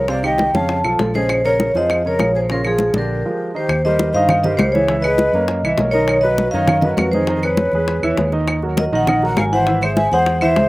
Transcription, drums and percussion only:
0.08 high bongo, high conga
0.23 high bongo, high conga, claves
0.38 high bongo, high conga
0.55 high conga
0.69 high bongo, high conga
0.84 high bongo, high conga, claves
0.99 high bongo, low bongo, high conga
1.14 high bongo, high conga
1.29 high bongo, high conga, claves
1.45 high conga
1.60 high bongo, high conga
1.75 high conga
1.90 high bongo, high conga, claves
2.05 high conga
2.19 high bongo, low bongo, high conga, claves
2.49 high bongo, high conga
2.64 high bongo, high conga, claves
2.79 high bongo, high conga
2.94 high conga
3.69 high bongo, high conga, claves
3.85 high conga
3.99 high bongo, high conga
4.14 high conga
4.29 high bongo, high conga, low conga, claves
4.44 high conga, low conga
4.59 high bongo, low bongo, high conga, claves
4.75 high conga
4.88 high bongo
5.04 high bongo, high conga, claves
5.18 high bongo, high conga
5.34 high bongo, high conga
5.48 high bongo, high conga
5.65 high conga, claves
5.78 high bongo, low bongo, high conga
5.93 high bongo, high conga
6.08 high bongo, high conga, claves
6.25 high conga
6.38 high bongo, high conga
6.53 high conga
6.68 high bongo, high conga, low conga, claves
6.82 high conga, low conga
6.97 high bongo, low bongo, high conga, claves
7.13 high conga
7.27 high bongo, high conga
7.43 high bongo, high conga, claves
7.57 high bongo, high conga
7.72 high bongo, high conga
7.87 high bongo, high conga
8.03 high conga, claves
8.17 high bongo, low bongo, high conga
8.32 high bongo, high conga
8.47 high bongo, high conga, claves
8.62 high conga
8.77 high bongo, high conga
8.93 high conga
9.07 high bongo, high conga, low conga, claves
9.22 high conga
9.37 high bongo, low bongo, high conga, claves
9.67 high bongo, high conga
9.81 high bongo, high conga, claves
9.97 high bongo, high conga
10.12 high bongo, high conga
10.26 high bongo, high conga
10.41 high conga, claves
10.56 high bongo, low bongo, high conga

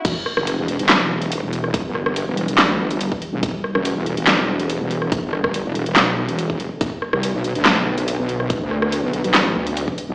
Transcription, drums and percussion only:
0.05 kick, closed hi-hat, crash
0.26 cross-stick
0.37 cross-stick
0.47 closed hi-hat
0.68 closed hi-hat
0.79 closed hi-hat
0.89 cross-stick, snare, clap, closed hi-hat
1.22 closed hi-hat
1.32 closed hi-hat
1.53 closed hi-hat
1.64 cross-stick
1.74 kick, closed hi-hat
1.95 cross-stick
2.06 cross-stick
2.16 closed hi-hat
2.37 closed hi-hat
2.48 closed hi-hat
2.58 snare, clap, closed hi-hat
2.91 closed hi-hat
3.01 closed hi-hat
3.12 kick
3.22 closed hi-hat
3.43 kick, closed hi-hat
3.64 cross-stick
3.75 cross-stick
3.85 closed hi-hat
4.06 closed hi-hat
4.17 closed hi-hat
4.27 cross-stick, snare, clap, closed hi-hat
4.60 closed hi-hat
4.70 closed hi-hat
4.91 closed hi-hat
5.02 cross-stick
5.12 kick, closed hi-hat
5.33 cross-stick
5.44 kick, cross-stick
5.54 closed hi-hat
5.75 closed hi-hat
5.86 closed hi-hat
5.96 snare, clap, closed hi-hat
6.29 closed hi-hat
6.39 closed hi-hat
6.50 kick
6.60 closed hi-hat
6.81 kick, closed hi-hat
7.02 cross-stick
7.13 cross-stick
7.23 closed hi-hat
7.44 closed hi-hat
7.55 closed hi-hat
7.66 cross-stick, snare, clap, closed hi-hat
7.98 closed hi-hat
8.08 closed hi-hat
8.29 closed hi-hat
8.40 cross-stick
8.50 kick, closed hi-hat
8.71 cross-stick
8.82 cross-stick
8.92 closed hi-hat
9.13 closed hi-hat
9.24 closed hi-hat
9.34 snare, clap, closed hi-hat
9.67 closed hi-hat
9.77 closed hi-hat
9.88 kick
9.98 closed hi-hat

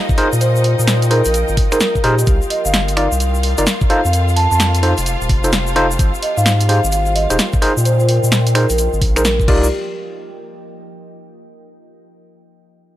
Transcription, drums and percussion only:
0.09 kick, shaker
0.18 open hi-hat
0.33 shaker
0.41 closed hi-hat, shaker
0.56 shaker
0.64 open hi-hat
0.79 shaker
0.88 finger snap, snare, closed hi-hat, shaker
1.02 closed hi-hat, shaker
1.11 open hi-hat
1.25 open hi-hat, shaker
1.34 closed hi-hat, shaker
1.48 shaker
1.57 kick, open hi-hat
1.72 finger snap, closed hi-hat, shaker
1.80 snare, closed hi-hat, shaker
1.95 kick, shaker
2.04 open hi-hat
2.19 closed hi-hat, shaker
2.27 kick, closed hi-hat, shaker
2.42 shaker
2.50 open hi-hat
2.65 shaker
2.74 finger snap, snare, closed hi-hat, shaker
2.88 closed hi-hat, shaker
2.97 finger snap, open hi-hat
3.12 shaker
3.20 closed hi-hat, shaker
3.35 shaker
3.43 open hi-hat
3.58 closed hi-hat, shaker
3.67 snare, closed hi-hat, shaker
3.81 kick, shaker
3.90 open hi-hat
4.05 shaker
4.13 closed hi-hat, shaker
4.29 shaker
4.37 open hi-hat
4.52 shaker
4.60 finger snap, snare, closed hi-hat, shaker
4.75 closed hi-hat, shaker
4.83 open hi-hat
4.98 open hi-hat, shaker
5.06 closed hi-hat, shaker
5.21 shaker
5.29 kick, open hi-hat
5.44 closed hi-hat, shaker
5.53 snare, closed hi-hat, shaker
5.67 shaker
5.76 open hi-hat
5.91 shaker
5.99 kick, closed hi-hat, shaker
6.14 shaker
6.23 open hi-hat
6.37 shaker
6.46 finger snap, snare, closed hi-hat, shaker
6.60 closed hi-hat, shaker
6.69 open hi-hat
6.84 shaker
6.92 closed hi-hat, shaker
7.06 shaker
7.16 open hi-hat
7.30 closed hi-hat, shaker
7.39 snare, closed hi-hat, shaker
7.53 kick, shaker
7.62 open hi-hat
7.77 shaker
7.85 closed hi-hat, shaker
8.00 shaker
8.09 open hi-hat
8.24 shaker
8.32 finger snap, snare, closed hi-hat, shaker
8.47 closed hi-hat, shaker
8.55 finger snap, open hi-hat
8.70 open hi-hat, shaker
8.78 closed hi-hat, shaker
8.93 shaker
9.01 kick, open hi-hat
9.16 finger snap, closed hi-hat, shaker
9.25 snare, closed hi-hat, shaker
9.40 kick, shaker
9.48 kick, crash
9.64 shaker

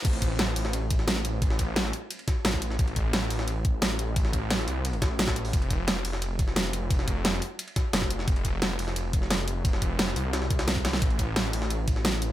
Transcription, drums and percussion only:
0.05 kick, closed hi-hat, crash, ride
0.13 ride
0.22 kick, closed hi-hat, ride
0.39 snare, closed hi-hat, ride
0.56 closed hi-hat, open hi-hat
0.65 snare
0.73 closed hi-hat, ride
0.90 kick, closed hi-hat, ride
0.99 snare
1.08 snare, closed hi-hat, ride
1.16 snare
1.25 closed hi-hat, ride
1.42 kick, closed hi-hat, ride
1.50 snare
1.59 kick, closed hi-hat, ride
1.76 snare, closed hi-hat, ride
1.85 snare
1.93 open hi-hat
2.10 closed hi-hat, ride
2.19 ride
2.28 kick, snare, closed hi-hat, ride
2.45 snare, closed hi-hat, ride
2.53 kick, snare
2.62 closed hi-hat, ride
2.70 snare
2.79 kick, closed hi-hat, ride
2.88 ride
2.96 kick, closed hi-hat, ride
3.13 snare, closed hi-hat, ride
3.30 closed hi-hat, open hi-hat
3.39 snare
3.48 closed hi-hat, ride
3.65 kick, closed hi-hat
3.82 snare, closed hi-hat, ride
3.99 closed hi-hat, ride
4.16 kick, closed hi-hat, ride
4.25 snare
4.33 kick, closed hi-hat, ride
4.50 snare, closed hi-hat, ride
4.59 snare
4.68 open hi-hat, ride
4.85 closed hi-hat, ride
4.93 ride
5.02 kick, snare, closed hi-hat, ride
5.19 snare, closed hi-hat, open hi-hat
5.28 kick, snare, ride
5.36 closed hi-hat
5.45 open hi-hat
5.53 kick, closed hi-hat, ride
5.62 ride
5.70 kick, closed hi-hat, ride
5.88 snare, closed hi-hat, ride
6.05 closed hi-hat, open hi-hat
6.13 snare
6.22 closed hi-hat, ride
6.39 kick, closed hi-hat, ride
6.48 snare
6.56 snare, closed hi-hat, ride
6.65 snare
6.73 closed hi-hat, ride
6.90 kick, closed hi-hat, ride
6.99 snare
7.08 kick, closed hi-hat, ride
7.25 snare, closed hi-hat, ride
7.33 snare
7.42 open hi-hat
7.59 closed hi-hat, ride
7.68 ride
7.76 kick, snare, closed hi-hat, ride
7.93 snare, closed hi-hat, ride
8.02 kick, snare
8.10 closed hi-hat, ride
8.19 snare
8.28 kick, closed hi-hat, ride
8.36 ride
8.45 kick, closed hi-hat, ride
8.62 snare, closed hi-hat, ride
8.79 closed hi-hat, open hi-hat
8.88 snare
8.96 closed hi-hat, ride
9.13 kick, closed hi-hat, ride
9.22 snare
9.30 snare, closed hi-hat, ride
9.48 closed hi-hat, ride
9.65 kick, closed hi-hat, ride
9.73 snare
9.82 kick, closed hi-hat, ride
9.99 snare, closed hi-hat, ride
10.08 snare
10.16 open hi-hat, ride
10.33 snare, closed hi-hat, ride
10.42 snare
10.50 kick, closed hi-hat, ride
10.59 snare, ride
10.68 snare, closed hi-hat
10.76 kick, ride
10.85 snare, closed hi-hat, ride
10.93 snare
11.02 kick, closed hi-hat, ride
11.10 ride
11.19 kick, closed hi-hat, ride
11.36 snare, closed hi-hat, ride
11.53 closed hi-hat, open hi-hat
11.62 snare
11.70 closed hi-hat, ride
11.88 kick, closed hi-hat, ride
11.96 snare
12.05 snare, closed hi-hat, ride
12.13 snare
12.22 closed hi-hat, ride

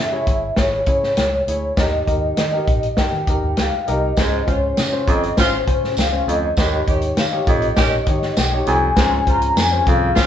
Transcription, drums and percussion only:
0.27 kick, closed hi-hat
0.56 kick, snare, closed hi-hat
0.86 kick, closed hi-hat
1.03 snare
1.17 snare, closed hi-hat
1.48 closed hi-hat
1.77 kick, snare, closed hi-hat
2.08 kick, closed hi-hat
2.37 snare, closed hi-hat
2.68 kick, closed hi-hat
2.83 closed hi-hat
2.97 kick, snare, closed hi-hat
3.27 kick, closed hi-hat
3.57 snare, closed hi-hat
3.88 closed hi-hat
4.17 kick, snare, closed hi-hat, tambourine
4.48 kick, closed hi-hat
4.77 snare, closed hi-hat, tambourine
5.08 kick, closed hi-hat
5.23 closed hi-hat
5.37 kick, snare, closed hi-hat, tambourine
5.68 kick, closed hi-hat
5.84 snare
5.97 snare, closed hi-hat, tambourine
6.29 closed hi-hat
6.57 kick, snare, closed hi-hat, tambourine
6.88 kick, closed hi-hat
7.01 closed hi-hat
7.17 snare, closed hi-hat, tambourine
7.47 kick, closed hi-hat
7.62 closed hi-hat
7.77 kick, snare, closed hi-hat, tambourine
8.06 kick, closed hi-hat
8.22 snare
8.36 snare, closed hi-hat, tambourine
8.67 closed hi-hat
8.96 kick, snare, closed hi-hat, tambourine
9.27 kick, closed hi-hat
9.41 closed hi-hat
9.57 snare, closed hi-hat, tambourine
9.87 kick, closed hi-hat
10.16 kick, snare, closed hi-hat, tambourine

